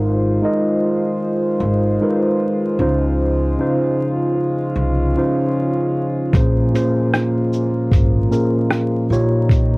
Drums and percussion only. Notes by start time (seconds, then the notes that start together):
6.33 kick, closed hi-hat
6.76 closed hi-hat, shaker
7.14 cross-stick, closed hi-hat
7.53 shaker
7.92 kick, closed hi-hat
8.33 shaker
8.71 cross-stick, closed hi-hat
9.13 shaker
9.49 kick, closed hi-hat